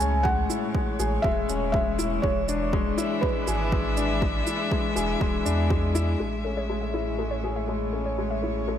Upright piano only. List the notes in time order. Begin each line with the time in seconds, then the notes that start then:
Already playing: G#3 E4 G#4
0.00 C#4
0.24 G#3
0.49 E4
0.75 G#3
0.99 G#4
1.24 G#3
1.49 C#4
1.74 G#3
1.99 E4
2.23 G#3
2.48 D4
2.73 G#3
2.98 E4
3.23 G#3
3.47 G#4
3.72 G#3
3.97 D4
4.22 G#3
4.47 E4
4.71 G#3
4.96 G#4
5.20 G#3
5.45 D4
5.70 G#3
5.95 E4
6.20 G#3
6.45 C#4
6.69 G#3
6.94 E4
7.19 G#3
7.44 G#4
7.68 G#3
7.93 C#4
8.18 G#3
8.43 E4
8.68 G#3